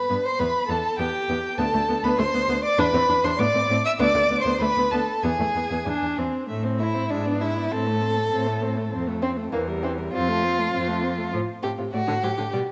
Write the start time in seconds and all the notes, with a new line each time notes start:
Already playing: B4 B5
0.09 G2 B3
0.25 C5 C6
0.39 E2 B3 B4 B5
0.68 E2 B3 A4 A5
0.98 E2 B3 G4 G5
1.29 E2 B3
1.58 D2 B3 A4 A5
1.73 D2 A3
1.89 D2 B3
2.03 D2 B3 B4 B5
2.18 D2 A3 C5 C6
2.34 D2 B3
2.48 D2 B3
2.64 D5 D6
2.78 E2 D4 B4 B5
2.94 E2 C4
3.09 E2 D4
3.24 E2 D4 C5 C6
3.39 A2 B3 D5 D6
3.54 A2 C4
3.69 A2 C4
3.85 E5 E6
3.99 D2 B3 D5 D6
4.14 D2 A3
4.30 D2 B3
4.41 D2 C5 C6
4.46 B3
4.60 D2 A3 B4 B5
4.76 D2 B3
4.91 D2 B3 A4 A5
5.23 E2 B3 G#4 G#5
5.39 E2 A3
5.55 E2 B3
5.70 E2 B3
5.86 E2 D4
6.02 E2
6.17 E2 C4
6.48 A2 A3 E5
6.63 C4 C5
6.79 A3 E4 E5
6.94 C4 C5
7.09 G#2 G#3 D4 E5
7.25 B3 D5
7.41 G#3 E4 E5
7.57 B3 D5
7.71 A2 C4 A4 C5
7.86 A3 A4
8.02 C4 C5
8.16 A3 A4
8.32 A2 C4 C5
8.47 A3 A4
8.62 C4 C5
8.77 A3 A4
8.92 F2 C4 C5
9.07 A3 A4
9.22 C4 C5
9.37 A3 A4
9.52 E2 E3 A#3 C5
9.68 G3 A#4
9.83 E3 C4 C5
9.98 G3 A#4
10.13 F2 C4 F4 C5
10.29 A3 A4
10.44 C4 C5
10.58 A3 A4
10.73 F2 C4 C5
10.88 A3 A4
11.03 C4 C5
11.18 A3 A4
11.33 A2 F3 C5
11.63 A2 C3 G4 A4
11.78 A2 C3 F4
11.93 A2 A3 F#4 D5
12.07 A2 D3 A4
12.23 A2 F#3 G4 C5
12.38 A2 D3 A4
12.53 B2 G3 D5